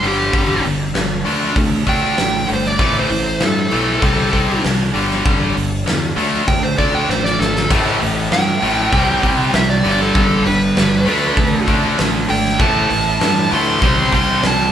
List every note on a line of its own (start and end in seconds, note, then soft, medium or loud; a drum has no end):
0.02 0.29 G1 medium
0.02 0.32 G2 medium
0.02 0.32 D3 medium
0.02 0.32 G3 loud
0.02 1.25 G3 medium
0.02 2.77 D4 medium
0.02 2.78 A4 medium
0.02 open hi-hat medium
0.07 0.65 G4 medium
0.33 0.60 G1 medium
0.33 0.63 G2 medium
0.33 0.63 D3 medium
0.33 0.63 G3 loud
0.33 kick loud
0.33 open hi-hat medium
0.64 0.91 G1 medium
0.64 0.92 G2 medium
0.64 0.92 D3 medium
0.64 open hi-hat medium
0.94 1.22 G1 medium
0.94 1.23 G2 medium
0.94 1.23 D3 medium
0.94 snare loud
0.94 open hi-hat medium
1.25 1.52 D2 medium
1.25 1.55 D3 medium
1.25 1.55 A3 medium
1.25 1.55 D4 loud
1.25 2.78 E5 medium
1.25 open hi-hat medium
1.56 1.82 D2 medium
1.56 1.85 D3 medium
1.56 1.85 A3 medium
1.56 kick loud
1.56 open hi-hat medium
1.86 2.13 D2 medium
1.86 2.16 D3 medium
1.86 2.16 A3 medium
1.86 2.17 D4 loud
1.86 2.48 G5 loud
1.86 kick medium
1.86 open hi-hat medium
2.17 2.45 A1 medium
2.17 2.46 D3 medium
2.17 2.46 A3 medium
2.17 snare loud
2.17 open hi-hat medium
2.48 2.76 G1 medium
2.48 2.76 D3 medium
2.48 2.76 A3 medium
2.48 open hi-hat medium
2.53 2.67 C5 medium
2.64 2.96 D5 medium
2.64 snare soft
2.78 3.06 A1 medium
2.78 3.08 A2 medium
2.78 3.09 E3 medium
2.78 3.09 A3 loud
2.78 4.01 A3 medium
2.78 4.01 E4 medium
2.78 4.01 C5 medium
2.78 kick loud
2.78 open hi-hat medium
2.99 3.42 C5 medium
3.10 3.37 A1 medium
3.10 3.38 A2 medium
3.10 3.38 E3 medium
3.10 open hi-hat medium
3.40 3.68 G2 medium
3.40 3.68 A2 medium
3.40 3.69 E3 medium
3.40 snare loud
3.40 open hi-hat medium
3.45 4.62 A4 loud
3.71 3.98 B1 medium
3.71 4.00 A2 medium
3.71 4.01 E3 loud
3.71 4.01 A3 loud
3.71 open hi-hat medium
4.01 4.29 C2 medium
4.01 4.31 C3 medium
4.01 4.31 G3 medium
4.01 4.32 C4 medium
4.01 4.94 C4 medium
4.01 4.94 G4 medium
4.01 4.94 D5 medium
4.01 kick loud
4.01 open hi-hat medium
4.32 4.59 C2 medium
4.32 4.61 C3 medium
4.32 4.62 G3 loud
4.32 4.62 C4 medium
4.32 kick medium
4.32 open hi-hat medium
4.63 4.90 C2 medium
4.63 4.91 C3 medium
4.63 4.91 G3 medium
4.63 snare loud
4.63 open hi-hat medium
4.93 5.21 G1 medium
4.93 5.23 G2 medium
4.93 5.23 D3 medium
4.93 6.15 G3 medium
4.93 5.23 G3 medium
4.93 7.67 D4 medium
4.93 7.67 A4 medium
4.93 open hi-hat medium
5.11 snare soft
5.25 5.51 G1 medium
5.25 5.54 G2 loud
5.25 5.54 D3 medium
5.25 5.54 G3 loud
5.25 kick loud
5.25 open hi-hat medium
5.56 5.82 G1 medium
5.56 5.84 G2 medium
5.56 5.84 D3 medium
5.56 open hi-hat medium
5.86 6.13 E2 medium
5.86 6.14 G2 medium
5.86 6.14 D3 medium
5.86 snare loud
5.86 open hi-hat medium
6.16 6.43 D2 medium
6.16 6.46 D3 medium
6.16 6.46 A3 loud
6.16 6.46 D4 medium
6.16 7.68 E5 medium
6.16 open hi-hat medium
6.47 6.74 D2 medium
6.47 6.75 D3 medium
6.47 6.75 A3 medium
6.47 6.63 G5 loud
6.47 kick loud
6.47 open hi-hat medium
6.63 6.78 C5 medium
6.78 7.04 D2 medium
6.78 7.07 D3 loud
6.78 7.07 A3 loud
6.78 7.08 D4 loud
6.78 6.93 D5 medium
6.78 kick medium
6.78 open hi-hat medium
6.95 7.09 G5 loud
7.09 7.35 A1 medium
7.09 7.37 D3 medium
7.09 7.37 A3 medium
7.09 7.24 C5 medium
7.09 snare medium
7.24 7.39 D5 medium
7.24 snare medium
7.39 7.66 G#1 medium
7.39 7.67 D3 medium
7.39 7.67 A3 medium
7.39 7.69 A4 loud
7.39 snare medium
7.56 snare medium
7.68 7.97 A1 medium
7.68 7.99 A2 medium
7.68 7.99 E3 medium
7.68 8.91 A3 medium
7.68 8.00 A3 loud
7.68 8.90 E4 medium
7.68 8.90 B4 medium
7.68 kick loud
7.68 open hi-hat medium
7.68 crash loud
8.00 8.27 A1 medium
8.00 8.28 A2 medium
8.00 8.28 E3 medium
8.00 open hi-hat medium
8.31 8.57 G2 medium
8.31 8.59 A2 medium
8.31 8.59 E3 medium
8.31 9.51 G5 loud
8.31 snare loud
8.31 open hi-hat medium
8.62 8.89 A1 medium
8.62 8.91 A2 medium
8.62 8.91 E3 medium
8.62 8.91 A3 loud
8.62 open hi-hat medium
8.92 9.19 C2 medium
8.92 9.21 C3 medium
8.92 9.22 G3 medium
8.92 9.84 C4 medium
8.92 9.22 C4 medium
8.92 9.84 G4 medium
8.92 9.85 D5 medium
8.92 kick loud
8.92 open hi-hat medium
9.23 9.49 C2 medium
9.23 9.52 C3 medium
9.23 9.52 G3 loud
9.23 9.52 C4 loud
9.23 kick medium
9.23 open hi-hat medium
9.53 9.80 C2 medium
9.53 9.81 C3 medium
9.53 9.81 G3 medium
9.53 9.70 E5 loud
9.53 snare loud
9.53 open hi-hat medium
9.70 9.99 D5 medium
9.84 10.11 G1 medium
9.84 10.13 G2 medium
9.84 10.13 D3 medium
9.84 11.06 G3 medium
9.84 10.13 G3 medium
9.84 11.06 D4 medium
9.84 12.57 A4 medium
9.84 open hi-hat medium
10.02 10.46 A4 loud
10.14 10.41 G1 medium
10.14 10.44 G2 medium
10.14 10.44 D3 medium
10.14 10.44 G3 loud
10.14 kick loud
10.14 open hi-hat medium
10.45 10.72 G1 loud
10.45 10.73 G2 medium
10.45 10.73 D3 medium
10.45 11.65 B4 loud
10.45 open hi-hat medium
10.76 11.02 G1 medium
10.76 11.04 G2 medium
10.76 11.04 D3 medium
10.76 snare loud
10.76 open hi-hat medium
11.05 11.33 D2 medium
11.05 11.35 D3 medium
11.05 11.35 A3 loud
11.05 11.35 D4 loud
11.05 12.59 D4 medium
11.05 12.59 E5 medium
11.05 open hi-hat medium
11.36 11.63 D2 medium
11.36 11.65 D3 medium
11.36 11.65 A3 medium
11.36 kick loud
11.36 open hi-hat medium
11.66 11.94 D2 medium
11.66 11.96 D3 loud
11.66 11.96 A3 loud
11.66 11.97 D4 loud
11.66 kick medium
11.66 open hi-hat medium
11.98 12.25 A1 medium
11.98 12.26 D3 medium
11.98 12.26 A3 loud
11.98 snare loud
11.98 open hi-hat medium
12.28 12.56 G#1 medium
12.28 12.56 D3 medium
12.28 12.57 A3 medium
12.28 12.59 G5 loud
12.28 open hi-hat medium
12.45 snare soft
12.59 12.86 A1 medium
12.59 12.88 A2 loud
12.59 12.89 E3 loud
12.59 12.89 A3 loud
12.59 13.82 A3 medium
12.59 13.82 B3 medium
12.59 13.82 E4 medium
12.59 13.50 A5 loud
12.59 kick loud
12.59 open hi-hat medium
12.89 13.17 A1 loud
12.89 13.18 A2 medium
12.89 13.18 E3 medium
12.89 open hi-hat medium
13.20 13.48 G2 medium
13.20 13.48 A2 medium
13.20 13.48 E3 medium
13.20 snare loud
13.20 open hi-hat medium
13.50 13.78 D2 medium
13.50 13.80 A2 medium
13.50 13.80 E3 medium
13.50 13.80 A3 medium
13.50 14.12 C6 loud
13.50 open hi-hat medium
13.81 14.08 C2 medium
13.81 14.11 C3 medium
13.81 14.11 G3 medium
13.81 14.11 C4 medium
13.81 14.72 C4 medium
13.81 14.72 G4 medium
13.81 14.72 D5 medium
13.81 kick loud
13.81 open hi-hat medium
14.12 14.39 C2 medium
14.12 14.41 C3 loud
14.12 14.42 G3 loud
14.12 14.42 C4 loud
14.12 14.44 C6 loud
14.12 kick medium
14.12 open hi-hat medium
14.42 14.69 C2 medium
14.42 14.71 C3 medium
14.42 14.71 G3 medium
14.42 snare loud
14.42 open hi-hat medium
14.47 14.72 A5 medium